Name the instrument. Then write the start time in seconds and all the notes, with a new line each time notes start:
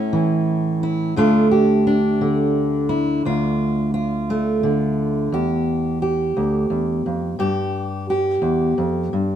steel-string acoustic guitar
Already playing: A2 A3 C#4 E4
0.13 E3
0.83 E4
1.16 D2 A3 D4 F4
1.51 G4
1.87 D4
2.21 D3
2.89 E4
3.25 D2 F4
3.94 F4
4.30 A3
4.63 D3
5.32 E2 G4
6.02 G4
6.37 D2
6.70 E2
7.06 F2
7.39 G2 G4
8.10 G4
8.42 E2
8.78 F2
9.13 G2